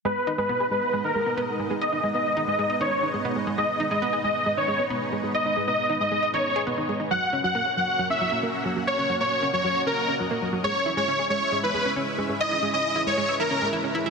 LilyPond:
<<
  \new Staff \with { instrumentName = "Supersaw synth" } { \time 4/4 \key gis \minor \tempo 4 = 136 b'8. b'8. b'8. ais'8. r4 | dis''8. dis''8. dis''8. cis''8. r4 | dis''8. dis''8. dis''8. cis''8. r4 | dis''8. dis''8. dis''8. cis''8. r4 |
fis''8. fis''8. fis''8. e''8. r4 | cis''8. cis''8. cis''8. ais'8. r4 | cis''8. cis''8. cis''8. b'8. r4 | dis''8. dis''8. cis''8. ais'8. r4 | }
  \new Staff \with { instrumentName = "Analog synth pad" } { \time 4/4 \key gis \minor << { <gis b dis' dis''>1~ | <gis b dis' dis''>1~ | <gis b dis' dis''>1~ | <gis b dis' dis''>1 |
<ais cis' fis' fis''>1~ | <ais cis' fis' fis''>1 | <gis cis' e' e''>1~ | <gis cis' e' e''>1 | } \\ { b'1~ | b'1~ | b'1~ | b'1 |
cis''1 | dis''1 | cis''1 | b'1 | } >> }
  \new Staff \with { instrumentName = "Synth arpeggio sound" } { \time 4/4 \key gis \minor gis16 r16 dis'16 gis16 b16 gis'16 gis16 r16 gis16 dis'16 gis16 b16 b16 r16 gis16 gis16 | dis''16 dis'16 gis16 b16 r16 dis'16 gis16 gis16 dis''16 dis'16 r16 dis'16 gis16 b16 gis16 gis16 | gis16 r16 dis'16 gis16 b16 gis'16 gis16 r16 gis16 dis'16 gis16 b16 b16 r16 gis16 gis16 | dis''16 dis'16 gis16 b16 r16 dis'16 gis16 gis16 dis''16 dis'16 r16 gis'16 b16 dis'16 gis16 dis'16 |
fis16 r16 cis'16 fis16 ais16 fis'16 fis16 r16 fis16 cis'16 fis16 ais16 ais16 r16 fis16 fis16 | cis''16 cis'16 fis16 ais16 r16 cis'16 fis16 fis16 cis''16 cis'16 r16 cis'16 fis16 ais16 fis16 fis16 | gis16 r16 e'16 gis16 cis'16 gis'16 gis16 r16 gis16 e'16 gis16 cis'16 cis'16 r16 gis16 gis16 | e''16 e'16 gis16 cis'16 r16 e'16 gis16 gis16 e''16 e'16 cis'16 gis16 e'16 cis'16 e'16 e'16 | }
>>